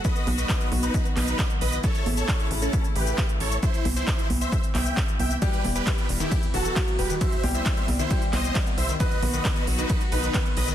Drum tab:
RD |----------------|----------------|----------------|x---x---x---x---|
HH |xxoxxxoxxxoxxxo-|xxoxxxoxxxoxxxox|xxoxxxoxxxo-xxox|xxoxxxo-xxoxxxox|
SH |xx-xxx-xxx-xxx-x|xx-xxx-xxx-xxx-x|xx-xxx-xxx-xxx-x|xx-xxx-xxx-xxx-x|
CP |----x-----x-x---|----x-------x---|----x-----x-x---|----x-------x---|
CG |--o---o---o-----|--o-------------|--o---o---o---o-|--o-------------|
BD |o---o---o---o---|o---o---o---o---|o---o---o---o---|o---o---o---o---|

RD |x---x---x---x---|x---x---x---x---|
HH |xxo-xxo-xxoxxxox|xxo-xxoxxxoxxxox|
SH |xx-xxx-xxx-xxx-x|xx-xxx-xxx-xxx-x|
CP |----x-----x-x---|----x-------x---|
CG |--o---o---o-----|--o-------------|
BD |o---o---o---o---|o---o---o---o---|